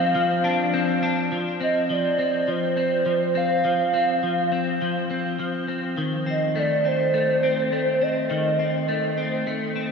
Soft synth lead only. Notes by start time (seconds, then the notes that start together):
Already playing: F5
1.63 D#5
1.92 D5
2.50 C5
3.38 F5
6.30 D#5
6.59 D5
6.88 C5
8.03 D#5